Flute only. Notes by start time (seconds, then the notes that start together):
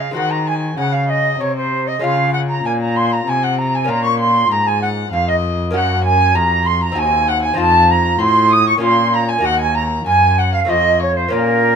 0.01 F5
0.16 F#5
0.30 A#5
0.47 G#5
0.77 F#5
0.92 F5
1.09 D#5
1.40 C#5
1.57 C5
1.88 D#5
2.03 F5
2.33 F#5
2.50 A#5
2.66 G#5
2.82 A#5
2.97 C6
3.13 A#5
3.29 G#5
3.44 F#5
3.58 A#5
3.74 G#5
3.91 A#5
4.07 C#6
4.21 C6
4.51 A#5
4.67 G#5
4.82 F#5
5.13 F5
5.28 D#5
5.74 F#5
6.05 G#5
6.35 A#5
6.66 C6
6.83 A#5
6.99 G#5
7.30 F#5
7.45 G#5
7.61 A5
7.91 A#5
8.23 C6
8.53 D#6
8.69 C#6
8.84 C6
9.14 A#5
9.31 G#5
9.45 F#5
9.62 G#5
9.76 A#5
10.07 G#5
10.38 F#5
10.54 F5
10.69 D#5
11.01 C#5
11.17 C5
11.32 A#4